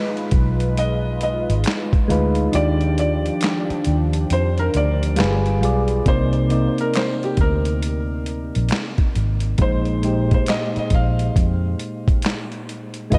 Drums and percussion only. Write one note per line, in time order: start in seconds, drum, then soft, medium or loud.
0.17 closed hi-hat soft
0.31 kick medium
0.31 closed hi-hat medium
0.60 closed hi-hat medium
0.77 closed hi-hat medium
1.21 closed hi-hat medium
1.50 closed hi-hat medium
1.64 snare loud
1.64 clap medium
1.64 closed hi-hat medium
1.93 kick medium
1.93 closed hi-hat soft
2.10 closed hi-hat medium
2.35 closed hi-hat medium
2.53 closed hi-hat medium
2.81 closed hi-hat soft
2.98 closed hi-hat medium
3.26 closed hi-hat soft
3.41 snare loud
3.41 clap medium
3.41 closed hi-hat medium
3.70 closed hi-hat soft
3.85 closed hi-hat medium
4.13 closed hi-hat medium
4.30 closed hi-hat medium
4.58 closed hi-hat soft
4.74 closed hi-hat medium
5.03 closed hi-hat medium
5.16 snare loud
5.16 clap medium
5.16 closed hi-hat medium
5.46 closed hi-hat soft
5.63 closed hi-hat medium
5.88 closed hi-hat medium
6.06 kick loud
6.06 closed hi-hat medium
6.33 closed hi-hat soft
6.50 closed hi-hat medium
6.78 closed hi-hat soft
6.94 snare loud
6.94 clap medium
6.94 closed hi-hat medium
7.23 closed hi-hat soft
7.37 kick medium
7.37 closed hi-hat medium
7.65 closed hi-hat medium
7.83 closed hi-hat medium
8.26 closed hi-hat medium
8.55 closed hi-hat soft
8.69 snare loud
8.69 clap medium
8.69 closed hi-hat medium
8.98 kick medium
8.98 closed hi-hat soft
9.15 closed hi-hat medium
9.40 closed hi-hat soft
9.58 kick loud
9.58 closed hi-hat medium
9.85 closed hi-hat soft
10.03 closed hi-hat medium
10.31 kick medium
10.31 closed hi-hat soft
10.46 snare loud
10.46 clap medium
10.46 closed hi-hat medium
10.76 closed hi-hat soft
10.90 kick medium
10.90 closed hi-hat medium
11.19 closed hi-hat medium
11.36 kick medium
11.36 closed hi-hat medium
11.79 closed hi-hat medium
12.08 kick loud
12.08 closed hi-hat soft
12.22 snare loud
12.22 clap medium
12.22 closed hi-hat medium
12.52 closed hi-hat soft
12.69 closed hi-hat medium
12.94 closed hi-hat medium
13.12 kick loud
13.12 closed hi-hat medium